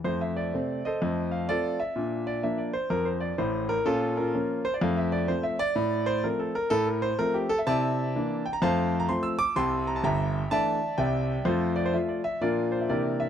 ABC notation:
X:1
M:4/4
L:1/16
Q:"Swing" 1/4=126
K:F
V:1 name="Grand piano"
c e d4 [Ac_e]4 f2 [FAd]2 =e2- | e2 d2 e d c2 B c d2 c2 B2 | [_DFA]2 [DFB]4 c =d f e d2 c e d2- | d2 c2 B A B2 A B c2 B G A e |
[dea]6 g b [cfa]3 b c' e' d'2 | [gac']2 b a [egb]4 [dea]4 [deg]4 | [FAc]2 d c e d e2 [FBd]2 c e [GBd]2 e2 |]
V:2 name="Grand piano" clef=bass
[F,,A,]4 [C,A,C]4 [F,,A,]4 [F,A,C]4 | [B,,D]4 [F,B,D]4 F,,4 [A,,,A,,]4 | B,,4 [F,B,_D]4 [F,,A,]4 [F,A,C]4 | A,,4 [F,A,C]4 A,,4 [F,A,C]4 |
[C,E]4 [E,B,D]4 [F,,A,]4 [F,A,C]4 | [C,,C,]4 [G,,,G,,]4 [E,A,D]4 [C,,C,]4 | [F,,A,]4 [F,A,F]4 [B,,F,B,D]4 [C,E,B,DE]4 |]